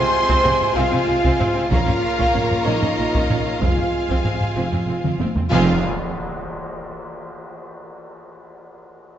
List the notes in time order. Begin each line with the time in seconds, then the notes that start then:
Already playing: C3 G#3 C4 F4 G#4 C5 G#5 C6
0.29 C3 C4, taiko
0.44 C2 C3 C4, taiko low-mid
0.61 taiko low-mid
0.74 C2 C3 C4 F4 F5
0.91 C3 C4, taiko low-mid
1.06 C2 C3 C4
1.23 C3 C4, taiko
1.39 C2 C3 C4, taiko low-mid
1.54 C3 C4
1.71 A#1 A#2 C#3 A#3 C#4 F4 A#4 C#5 F5 A#5, taiko
1.86 A#2 C#4, taiko low-mid
2.17 A#2 C#4, taiko
2.33 A#1 A#2 C#4, taiko low-mid
2.51 taiko low-mid
2.65 A#1 A#2 C#4 D#4 D#5
2.81 A#2 C#4, taiko low-mid
2.98 A#1 A#2 C#4
3.14 A#2 C#4, taiko
3.29 A#1 A#2 C#4, taiko low-mid
3.46 A#2 C#4
3.61 F1 F2 C3 G#3 C4 F4 G#4 C5 F5 G#5, taiko
3.77 F2 C4, taiko low-mid
4.09 F2 C4, taiko
4.24 F1 F2 C4, taiko low-mid
4.41 taiko low-mid
4.56 F1 F2 C4
4.72 F2 C4, taiko low-mid
4.87 F1 F2 C4
5.03 F2 C4, taiko mid
5.19 F1 F2 C4, taiko high
5.34 F2 C4, taiko low
5.48 F1 F2 C3 G#3 C4 F4 G#4 C5 F5 G#5, tam-tam, impact
5.53 C4 F4 F5